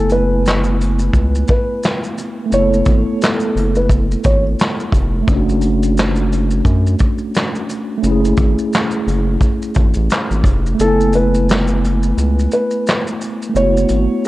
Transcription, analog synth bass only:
0.00 1.10 F#1 loud
1.14 1.44 C#2 medium
2.52 2.83 F#1 medium
2.86 3.04 G#1 medium
3.56 4.16 F#1 medium
4.25 4.55 G#1 medium
4.93 5.23 F1 loud
5.28 6.62 F#1 loud
6.65 6.96 F#2 loud
8.03 8.34 F#1 medium
8.38 8.56 G#1 loud
9.07 9.37 F#1 loud
9.76 9.94 G#1 medium
9.96 10.09 A1 medium
10.31 10.43 G#1 medium
10.44 10.75 F1 medium
10.80 12.13 F#1 loud
12.17 12.48 C#2 medium
13.55 13.86 F#1 medium
13.90 14.08 G#1 loud

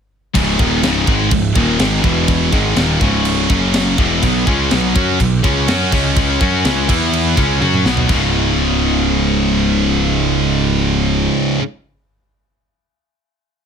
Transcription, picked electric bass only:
0.35 0.58 C#1 loud
0.59 0.82 D#1 medium
0.84 1.06 C#1 medium
1.07 1.30 G#1 medium
1.32 1.54 C#1 medium
1.55 1.78 D#1 loud
1.80 2.03 G#1 loud
2.04 2.49 E1 loud
2.53 2.75 G#1 loud
2.77 2.99 D#1 loud
3.01 3.46 C#1 loud
3.50 3.95 F#1 loud
3.98 4.21 E1 loud
4.23 4.45 B1 medium
4.47 4.69 C#2 loud
4.72 4.94 B1 loud
4.96 5.18 F#2 medium
5.20 5.42 B1 medium
5.44 5.66 C#2 medium
5.69 5.91 F#2 loud
5.93 6.37 C#2 medium
6.41 6.63 F#2 medium
6.65 6.87 C#2 medium
6.89 7.34 E2 medium
7.37 7.60 C#2 loud
7.61 7.84 F#2 loud
7.85 8.08 B1 loud
8.10 11.28 C#1 loud

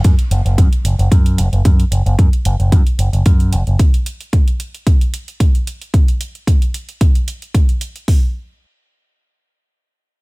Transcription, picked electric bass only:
0.05 0.13 F#2 medium
0.31 0.40 F#1 loud
0.45 0.59 F#1 medium
0.58 0.67 F#2 medium
0.84 0.94 F#1 medium
0.99 1.07 F#1 medium
1.12 1.40 F#2 medium
1.38 1.47 F#1 loud
1.52 1.61 F#1 medium
1.65 1.83 F#2 medium
1.91 2.01 F#1 medium
2.06 2.14 F#1 loud
2.19 2.28 F#2 medium
2.45 2.54 F#1 medium
2.59 2.74 F#1 medium
2.72 2.81 F#2 medium
2.98 3.08 F#1 medium
3.13 3.21 F#1 medium
3.26 3.54 F#2 medium
3.52 3.61 F#1 loud
3.67 3.75 F#1 medium

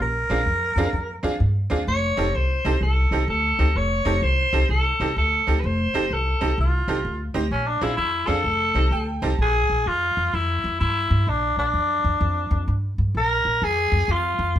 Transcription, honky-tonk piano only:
0.30 0.38 C4 medium
0.30 0.38 D4 medium
0.30 0.38 F4 medium
0.30 0.38 G#4 medium
0.77 0.85 C4 medium
0.77 0.86 D4 medium
0.77 0.85 F4 medium
0.77 0.86 G#4 medium
1.23 1.31 C4 medium
1.23 1.32 D4 medium
1.23 1.32 F4 medium
1.23 1.32 G#4 medium
1.70 1.78 C4 medium
1.70 1.79 D4 medium
1.70 1.79 F4 medium
1.70 1.79 G#4 medium
2.17 2.26 C4 medium
2.17 2.26 D#4 medium
2.17 2.26 G4 medium
2.17 2.26 A4 medium
2.65 2.73 C4 medium
2.65 2.73 D#4 medium
2.65 2.74 G4 medium
2.65 2.74 A4 medium
3.12 3.20 C4 medium
3.12 3.20 D#4 medium
3.12 3.20 G4 medium
3.12 3.21 A4 medium
3.59 3.67 C4 medium
3.59 3.67 D#4 soft
3.59 3.67 G4 medium
3.59 3.67 A4 medium
4.05 4.14 C4 medium
4.05 4.14 D#4 medium
4.05 4.14 G4 medium
4.05 4.14 A4 medium
4.53 4.61 C4 medium
4.53 4.61 D#4 medium
4.53 4.61 G4 medium
4.53 4.62 A4 medium
5.00 5.08 C4 medium
5.00 5.08 D#4 medium
5.00 5.09 G4 medium
5.00 5.09 A4 medium
5.47 5.55 C4 medium
5.47 5.55 D#4 medium
5.47 5.56 G4 medium
5.47 5.56 A4 medium
5.94 6.02 C4 medium
5.94 6.02 D#4 medium
5.94 6.02 G4 medium
5.94 6.03 A4 medium
6.41 6.49 C4 medium
6.41 6.49 D#4 medium
6.41 6.49 G4 medium
6.41 6.50 A4 medium
6.88 6.96 C4 medium
6.88 6.96 D#4 medium
6.88 6.96 G4 medium
6.88 6.97 A4 medium
7.34 7.43 C4 medium
7.34 7.43 D#4 medium
7.34 7.43 G4 medium
7.34 7.43 C5 medium
7.81 7.90 C4 medium
7.81 7.90 D4 medium
7.81 7.90 F4 medium
7.81 7.90 G#4 medium
8.27 8.36 C4 medium
8.27 8.37 D4 medium
8.27 8.37 F4 medium
8.27 8.37 G#4 medium
8.75 8.84 C4 medium
8.75 8.84 D#4 medium
8.75 8.84 G4 medium
8.75 8.84 A4 medium
8.92 9.20 G5 medium
9.22 9.31 C4 medium
9.22 9.31 D#4 medium
9.22 9.31 G4 medium
9.22 9.31 A4 medium
9.22 9.38 A5 medium

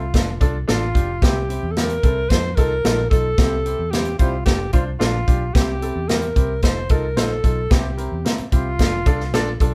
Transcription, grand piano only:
0.14 0.28 D4 medium
0.14 0.28 F4 medium
0.14 0.28 A4 medium
0.41 0.55 D4 medium
0.41 0.55 F4 medium
0.41 0.55 A4 medium
0.68 0.82 D4 medium
0.68 0.82 F4 medium
0.68 0.82 A4 loud
0.95 1.09 D4 medium
0.95 1.09 F4 medium
0.95 1.09 G4 medium
1.22 1.99 C3 medium
1.22 1.36 C4 medium
1.22 1.36 E4 medium
1.22 1.36 G4 medium
1.49 1.63 C4 medium
1.49 1.63 E4 medium
1.49 1.63 G4 medium
1.77 1.90 C4 medium
1.77 1.90 E4 medium
1.77 1.91 G4 medium
2.04 2.17 C4 medium
2.04 2.17 E4 medium
2.04 2.17 A4 medium
2.31 2.44 D#4 medium
2.31 2.44 F4 medium
2.31 2.45 A4 medium
2.57 2.71 D#4 medium
2.57 2.71 F4 medium
2.57 2.72 A4 loud
2.85 2.98 D#4 medium
2.85 2.98 F4 medium
2.85 2.99 A4 loud
3.11 3.25 D#4 medium
3.11 3.25 F4 medium
3.11 3.25 A4 medium
3.39 4.16 C3 medium
3.39 3.52 C4 medium
3.39 3.53 E4 medium
3.39 3.53 G4 medium
3.65 3.79 C4 medium
3.65 3.79 E4 medium
3.65 3.80 G4 medium
3.93 4.07 C4 medium
3.93 4.07 E4 medium
3.93 4.07 G4 medium
4.20 4.34 C4 medium
4.20 4.34 E4 medium
4.20 4.34 G4 medium
4.47 4.61 D4 medium
4.47 4.61 F4 medium
4.47 4.61 A4 medium
4.73 4.87 D4 medium
4.73 4.87 F4 medium
4.73 4.88 C5 loud
5.00 5.14 D4 medium
5.00 5.14 F4 medium
5.00 5.14 A4 medium
5.27 5.41 D4 medium
5.27 5.41 F4 medium
5.27 5.42 G4 medium
5.55 6.32 C3 medium
5.55 5.69 C4 medium
5.55 5.69 E4 medium
5.55 5.69 G4 medium
5.82 5.96 C4 medium
5.82 5.96 E4 medium
5.82 5.96 A4 medium
6.09 6.23 C4 medium
6.09 6.23 E4 medium
6.09 6.23 G4 medium
6.36 6.50 C4 medium
6.36 6.50 E4 medium
6.36 6.50 G4 medium
6.63 6.77 D#4 medium
6.63 6.77 F4 medium
6.63 6.77 A4 medium
6.90 7.04 D#4 medium
6.90 7.04 F4 medium
6.90 7.04 A4 loud
7.16 7.31 D#4 medium
7.16 7.31 F4 medium
7.16 7.31 C5 loud
7.44 7.58 D#4 medium
7.44 7.58 F4 medium
7.44 7.58 A4 medium
7.70 8.48 C3 medium
7.70 7.85 C4 medium
7.70 7.85 E4 medium
7.70 7.85 G4 medium
7.97 8.12 C4 medium
7.97 8.12 E4 medium
7.97 8.12 A#4 medium
8.24 8.39 C4 medium
8.24 8.39 E4 medium
8.24 8.39 A#4 medium
8.52 8.66 C4 medium
8.52 8.66 E4 medium
8.52 8.66 G4 medium
8.79 8.93 D4 medium
8.79 8.94 F4 medium
8.79 8.94 A4 medium
9.06 9.20 D4 medium
9.06 9.20 F4 medium
9.06 9.21 A4 loud
9.34 9.48 D4 loud
9.34 9.48 F4 loud
9.34 9.48 A4 loud
9.61 9.74 D4 medium
9.61 9.74 F4 medium
9.61 9.74 A4 loud

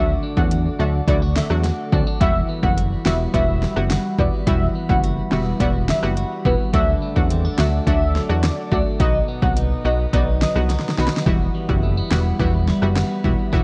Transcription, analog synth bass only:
0.00 0.16 D2 loud
0.37 0.69 E2 medium
0.79 1.01 D2 medium
1.07 1.40 D2 loud
1.50 1.72 E2 medium
1.92 2.03 D2 medium
2.21 2.42 E1 loud
2.63 2.96 F#1 medium
3.06 3.27 E1 medium
3.34 3.66 E1 loud
3.77 3.98 F#1 medium
4.19 4.30 E1 medium
4.47 4.69 E1 loud
4.90 5.22 F#1 loud
5.32 5.54 E1 medium
5.60 5.92 E1 loud
6.03 6.24 F#1 medium
6.45 6.56 E1 medium
6.74 6.95 D2 loud
7.16 7.48 E2 medium
7.58 7.80 D2 loud
7.87 8.19 D2 loud
8.29 8.51 E2 medium
8.72 8.82 D2 loud
9.00 9.22 B1 loud
9.42 9.75 C2 medium
9.85 10.06 B1 medium
10.13 10.45 B1 loud
10.56 10.77 C2 medium
10.98 11.09 B1 medium
11.26 11.48 E1 loud
11.69 12.01 F#1 medium
12.11 12.33 E1 medium
12.40 12.72 E1 loud
12.82 13.04 F#1 medium
13.25 13.35 E1 medium
13.53 13.64 E1 loud

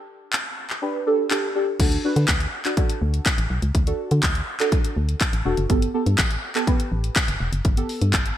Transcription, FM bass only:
1.80 1.98 D2 medium
2.16 2.26 D3 medium
2.28 2.47 D2 loud
3.02 3.20 D2 medium
3.38 3.47 A1 loud
3.50 3.60 B1 medium
3.63 3.72 C#2 medium
3.75 3.93 D2 loud
4.11 4.21 D3 loud
4.23 4.42 D2 loud
4.97 5.15 D2 medium
5.33 5.42 A1 loud
5.45 5.55 E1 loud
5.58 5.67 F#1 medium
5.70 5.88 G1 loud
6.06 6.16 G2 loud
6.19 6.37 A1 loud
6.92 7.10 A1 medium
7.28 7.38 F#1 medium
7.40 7.50 E1 loud
7.53 7.62 F#1 medium
7.65 7.84 G1 loud
8.02 8.15 G2 medium
8.14 8.32 G1 loud

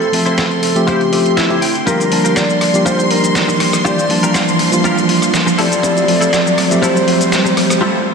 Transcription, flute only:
0.00 0.37 A4 loud
0.38 0.88 A4 loud
0.87 1.38 G4 loud
1.36 1.75 E4 medium
1.86 2.38 A#4 loud
2.36 2.87 D5 loud
2.86 3.12 C5 loud
3.11 3.58 A#4 loud
3.85 4.31 D5 loud
5.58 6.84 D5 loud
6.83 7.82 C5 loud

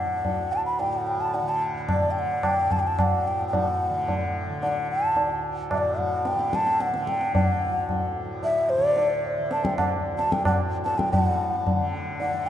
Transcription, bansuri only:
0.00 0.54 F#5 medium
0.52 0.65 A5 medium
0.66 0.81 B5 medium
0.80 0.94 G5 medium
0.93 1.08 F#5 medium
1.07 1.22 G5 medium
1.21 1.36 A5 medium
1.35 1.50 F#5 medium
1.49 1.62 A5 medium
1.90 2.12 D5 medium
2.11 2.20 G5 medium
2.19 2.47 F#5 medium
2.45 2.73 G5 medium
2.72 2.81 A5 medium
2.79 2.89 G5 medium
2.87 3.02 A5 medium
3.00 3.29 F#5 medium
3.28 3.47 G5 medium
3.48 3.56 G5 medium
3.55 4.36 F#5 medium
4.63 4.88 F#5 medium
4.91 5.41 A5 medium
5.73 5.79 E5 medium
5.78 6.00 D5 medium
5.99 6.29 F#5 medium
6.27 6.56 G5 medium
6.55 6.83 A5 medium
6.81 7.10 F#5 medium
7.08 7.35 G5 medium
7.35 7.46 G5 medium
7.46 8.12 F#5 medium
8.44 8.71 E5 loud
8.69 9.24 D5 medium
9.52 9.66 A5 medium
9.65 9.77 G5 medium
9.78 9.90 F#5 medium
10.18 10.34 A5 medium
10.33 10.46 G5 medium
10.46 10.58 F#5 medium
10.85 11.00 A5 medium
10.98 11.12 G5 medium
11.12 11.23 G5 medium
11.23 11.89 F#5 medium
12.21 12.48 F#5 medium

